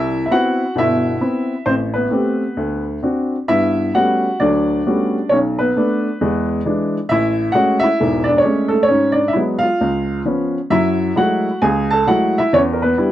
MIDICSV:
0, 0, Header, 1, 2, 480
1, 0, Start_track
1, 0, Key_signature, 3, "major"
1, 0, Tempo, 452148
1, 1765, Time_signature, 4, 2, 24, 8
1, 13927, End_track
2, 0, Start_track
2, 0, Title_t, "Upright piano"
2, 0, Program_c, 0, 0
2, 0, Note_on_c, 0, 36, 59
2, 0, Note_on_c, 0, 64, 73
2, 0, Note_on_c, 0, 76, 92
2, 255, Note_off_c, 0, 76, 0
2, 259, Note_off_c, 0, 64, 0
2, 273, Note_on_c, 0, 76, 63
2, 277, Note_off_c, 0, 36, 0
2, 327, Note_on_c, 0, 59, 48
2, 329, Note_off_c, 0, 76, 0
2, 331, Note_on_c, 0, 60, 46
2, 334, Note_on_c, 0, 64, 52
2, 336, Note_on_c, 0, 66, 67
2, 337, Note_on_c, 0, 78, 91
2, 658, Note_off_c, 0, 59, 0
2, 660, Note_off_c, 0, 60, 0
2, 661, Note_off_c, 0, 64, 0
2, 778, Note_off_c, 0, 66, 0
2, 778, Note_off_c, 0, 78, 0
2, 801, Note_on_c, 0, 47, 60
2, 806, Note_on_c, 0, 31, 60
2, 831, Note_on_c, 0, 76, 85
2, 843, Note_on_c, 0, 64, 67
2, 1218, Note_off_c, 0, 47, 0
2, 1221, Note_off_c, 0, 31, 0
2, 1273, Note_off_c, 0, 64, 0
2, 1283, Note_on_c, 0, 59, 41
2, 1284, Note_on_c, 0, 60, 40
2, 1289, Note_on_c, 0, 64, 48
2, 1615, Note_off_c, 0, 59, 0
2, 1615, Note_off_c, 0, 60, 0
2, 1618, Note_off_c, 0, 64, 0
2, 1734, Note_off_c, 0, 76, 0
2, 1759, Note_on_c, 0, 33, 57
2, 1759, Note_on_c, 0, 72, 79
2, 1775, Note_on_c, 0, 60, 58
2, 1831, Note_off_c, 0, 72, 0
2, 1845, Note_off_c, 0, 60, 0
2, 2055, Note_on_c, 0, 71, 65
2, 2084, Note_on_c, 0, 59, 49
2, 2179, Note_off_c, 0, 33, 0
2, 2238, Note_on_c, 0, 57, 46
2, 2246, Note_on_c, 0, 60, 42
2, 2250, Note_on_c, 0, 67, 48
2, 2574, Note_off_c, 0, 57, 0
2, 2578, Note_off_c, 0, 60, 0
2, 2580, Note_off_c, 0, 67, 0
2, 2728, Note_on_c, 0, 38, 53
2, 2991, Note_off_c, 0, 71, 0
2, 3005, Note_off_c, 0, 59, 0
2, 3149, Note_off_c, 0, 38, 0
2, 3213, Note_on_c, 0, 60, 42
2, 3220, Note_on_c, 0, 62, 36
2, 3222, Note_on_c, 0, 66, 45
2, 3551, Note_off_c, 0, 60, 0
2, 3554, Note_off_c, 0, 62, 0
2, 3555, Note_off_c, 0, 66, 0
2, 3697, Note_on_c, 0, 76, 87
2, 3699, Note_on_c, 0, 64, 66
2, 3702, Note_on_c, 0, 59, 53
2, 3705, Note_on_c, 0, 43, 54
2, 4123, Note_off_c, 0, 59, 0
2, 4125, Note_off_c, 0, 43, 0
2, 4151, Note_off_c, 0, 76, 0
2, 4152, Note_off_c, 0, 64, 0
2, 4184, Note_on_c, 0, 57, 42
2, 4187, Note_on_c, 0, 55, 44
2, 4191, Note_on_c, 0, 66, 65
2, 4191, Note_on_c, 0, 78, 79
2, 4192, Note_on_c, 0, 59, 39
2, 4195, Note_on_c, 0, 61, 43
2, 4520, Note_off_c, 0, 57, 0
2, 4521, Note_off_c, 0, 55, 0
2, 4524, Note_off_c, 0, 59, 0
2, 4525, Note_off_c, 0, 61, 0
2, 4640, Note_off_c, 0, 66, 0
2, 4668, Note_on_c, 0, 74, 74
2, 4675, Note_on_c, 0, 54, 53
2, 4679, Note_on_c, 0, 38, 58
2, 4681, Note_on_c, 0, 62, 60
2, 4688, Note_off_c, 0, 78, 0
2, 5090, Note_off_c, 0, 54, 0
2, 5093, Note_off_c, 0, 38, 0
2, 5161, Note_on_c, 0, 55, 41
2, 5165, Note_on_c, 0, 59, 39
2, 5168, Note_on_c, 0, 57, 41
2, 5168, Note_on_c, 0, 66, 47
2, 5171, Note_on_c, 0, 61, 40
2, 5489, Note_off_c, 0, 55, 0
2, 5490, Note_off_c, 0, 59, 0
2, 5492, Note_off_c, 0, 57, 0
2, 5492, Note_off_c, 0, 66, 0
2, 5494, Note_off_c, 0, 61, 0
2, 5597, Note_off_c, 0, 62, 0
2, 5620, Note_on_c, 0, 73, 75
2, 5643, Note_on_c, 0, 35, 57
2, 5643, Note_on_c, 0, 61, 64
2, 5662, Note_off_c, 0, 74, 0
2, 5692, Note_off_c, 0, 73, 0
2, 5713, Note_off_c, 0, 61, 0
2, 5930, Note_on_c, 0, 71, 73
2, 5958, Note_on_c, 0, 59, 53
2, 6056, Note_off_c, 0, 35, 0
2, 6112, Note_off_c, 0, 59, 0
2, 6121, Note_on_c, 0, 57, 47
2, 6128, Note_on_c, 0, 59, 44
2, 6129, Note_on_c, 0, 62, 52
2, 6447, Note_off_c, 0, 57, 0
2, 6451, Note_off_c, 0, 59, 0
2, 6451, Note_off_c, 0, 62, 0
2, 6594, Note_on_c, 0, 40, 60
2, 6594, Note_on_c, 0, 56, 59
2, 6853, Note_off_c, 0, 71, 0
2, 7006, Note_off_c, 0, 40, 0
2, 7006, Note_off_c, 0, 56, 0
2, 7063, Note_on_c, 0, 52, 42
2, 7068, Note_on_c, 0, 56, 41
2, 7076, Note_on_c, 0, 62, 48
2, 7393, Note_off_c, 0, 52, 0
2, 7395, Note_off_c, 0, 56, 0
2, 7399, Note_off_c, 0, 62, 0
2, 7527, Note_on_c, 0, 76, 90
2, 7546, Note_on_c, 0, 33, 59
2, 7554, Note_on_c, 0, 64, 76
2, 7952, Note_off_c, 0, 33, 0
2, 7973, Note_off_c, 0, 76, 0
2, 7983, Note_on_c, 0, 78, 88
2, 7987, Note_off_c, 0, 64, 0
2, 8008, Note_on_c, 0, 56, 47
2, 8011, Note_on_c, 0, 57, 44
2, 8015, Note_on_c, 0, 66, 73
2, 8017, Note_on_c, 0, 61, 54
2, 8275, Note_on_c, 0, 76, 93
2, 8303, Note_off_c, 0, 66, 0
2, 8317, Note_on_c, 0, 64, 68
2, 8318, Note_off_c, 0, 78, 0
2, 8337, Note_off_c, 0, 56, 0
2, 8338, Note_off_c, 0, 57, 0
2, 8342, Note_off_c, 0, 61, 0
2, 8495, Note_on_c, 0, 28, 64
2, 8497, Note_on_c, 0, 44, 61
2, 8746, Note_on_c, 0, 74, 81
2, 8762, Note_off_c, 0, 64, 0
2, 8790, Note_off_c, 0, 76, 0
2, 8797, Note_on_c, 0, 62, 65
2, 8897, Note_on_c, 0, 73, 76
2, 8903, Note_off_c, 0, 28, 0
2, 8904, Note_off_c, 0, 44, 0
2, 8923, Note_off_c, 0, 74, 0
2, 8951, Note_off_c, 0, 62, 0
2, 8952, Note_on_c, 0, 61, 61
2, 8964, Note_on_c, 0, 56, 47
2, 8971, Note_on_c, 0, 57, 41
2, 9219, Note_on_c, 0, 69, 72
2, 9246, Note_off_c, 0, 61, 0
2, 9251, Note_off_c, 0, 73, 0
2, 9254, Note_off_c, 0, 57, 0
2, 9270, Note_on_c, 0, 57, 51
2, 9291, Note_off_c, 0, 56, 0
2, 9372, Note_on_c, 0, 73, 84
2, 9417, Note_off_c, 0, 69, 0
2, 9425, Note_off_c, 0, 57, 0
2, 9426, Note_on_c, 0, 61, 68
2, 9448, Note_on_c, 0, 44, 57
2, 9683, Note_on_c, 0, 74, 74
2, 9694, Note_off_c, 0, 73, 0
2, 9723, Note_off_c, 0, 61, 0
2, 9730, Note_on_c, 0, 62, 54
2, 9851, Note_on_c, 0, 76, 73
2, 9857, Note_off_c, 0, 44, 0
2, 9869, Note_off_c, 0, 74, 0
2, 9894, Note_off_c, 0, 62, 0
2, 9906, Note_on_c, 0, 64, 55
2, 9926, Note_on_c, 0, 54, 48
2, 9929, Note_off_c, 0, 76, 0
2, 9933, Note_on_c, 0, 56, 42
2, 9939, Note_on_c, 0, 59, 48
2, 9977, Note_off_c, 0, 64, 0
2, 10175, Note_on_c, 0, 77, 85
2, 10219, Note_on_c, 0, 65, 54
2, 10251, Note_off_c, 0, 54, 0
2, 10254, Note_off_c, 0, 56, 0
2, 10258, Note_off_c, 0, 59, 0
2, 10414, Note_on_c, 0, 37, 54
2, 10812, Note_off_c, 0, 77, 0
2, 10826, Note_off_c, 0, 37, 0
2, 10834, Note_off_c, 0, 65, 0
2, 10885, Note_on_c, 0, 53, 39
2, 10888, Note_on_c, 0, 59, 36
2, 10891, Note_on_c, 0, 61, 45
2, 11220, Note_off_c, 0, 53, 0
2, 11222, Note_off_c, 0, 59, 0
2, 11223, Note_off_c, 0, 61, 0
2, 11361, Note_on_c, 0, 54, 59
2, 11364, Note_on_c, 0, 42, 63
2, 11364, Note_on_c, 0, 76, 86
2, 11378, Note_on_c, 0, 64, 70
2, 11785, Note_off_c, 0, 54, 0
2, 11787, Note_off_c, 0, 42, 0
2, 11818, Note_off_c, 0, 76, 0
2, 11826, Note_off_c, 0, 64, 0
2, 11843, Note_on_c, 0, 54, 50
2, 11845, Note_on_c, 0, 56, 43
2, 11852, Note_on_c, 0, 64, 50
2, 11854, Note_on_c, 0, 57, 45
2, 11861, Note_on_c, 0, 78, 80
2, 11872, Note_on_c, 0, 66, 65
2, 12183, Note_off_c, 0, 54, 0
2, 12184, Note_off_c, 0, 56, 0
2, 12188, Note_off_c, 0, 57, 0
2, 12188, Note_off_c, 0, 64, 0
2, 12309, Note_off_c, 0, 78, 0
2, 12315, Note_off_c, 0, 66, 0
2, 12332, Note_on_c, 0, 80, 85
2, 12337, Note_on_c, 0, 37, 64
2, 12348, Note_on_c, 0, 68, 63
2, 12629, Note_off_c, 0, 80, 0
2, 12638, Note_off_c, 0, 68, 0
2, 12639, Note_on_c, 0, 81, 87
2, 12660, Note_on_c, 0, 69, 68
2, 12756, Note_off_c, 0, 37, 0
2, 12802, Note_off_c, 0, 81, 0
2, 12811, Note_on_c, 0, 54, 47
2, 12813, Note_off_c, 0, 69, 0
2, 12819, Note_on_c, 0, 56, 40
2, 12819, Note_on_c, 0, 78, 87
2, 12820, Note_on_c, 0, 57, 44
2, 12828, Note_on_c, 0, 64, 51
2, 12839, Note_on_c, 0, 66, 64
2, 13125, Note_off_c, 0, 66, 0
2, 13143, Note_off_c, 0, 64, 0
2, 13144, Note_on_c, 0, 76, 84
2, 13146, Note_off_c, 0, 78, 0
2, 13149, Note_off_c, 0, 54, 0
2, 13153, Note_off_c, 0, 56, 0
2, 13153, Note_off_c, 0, 57, 0
2, 13159, Note_on_c, 0, 64, 63
2, 13299, Note_on_c, 0, 40, 65
2, 13304, Note_off_c, 0, 64, 0
2, 13310, Note_on_c, 0, 73, 89
2, 13312, Note_off_c, 0, 76, 0
2, 13333, Note_on_c, 0, 61, 69
2, 13363, Note_off_c, 0, 73, 0
2, 13386, Note_off_c, 0, 61, 0
2, 13515, Note_on_c, 0, 70, 52
2, 13613, Note_on_c, 0, 71, 72
2, 13615, Note_off_c, 0, 70, 0
2, 13633, Note_on_c, 0, 59, 56
2, 13717, Note_off_c, 0, 40, 0
2, 13774, Note_on_c, 0, 55, 52
2, 13779, Note_on_c, 0, 62, 47
2, 13782, Note_on_c, 0, 64, 55
2, 13927, Note_off_c, 0, 55, 0
2, 13927, Note_off_c, 0, 59, 0
2, 13927, Note_off_c, 0, 62, 0
2, 13927, Note_off_c, 0, 64, 0
2, 13927, Note_off_c, 0, 71, 0
2, 13927, End_track
0, 0, End_of_file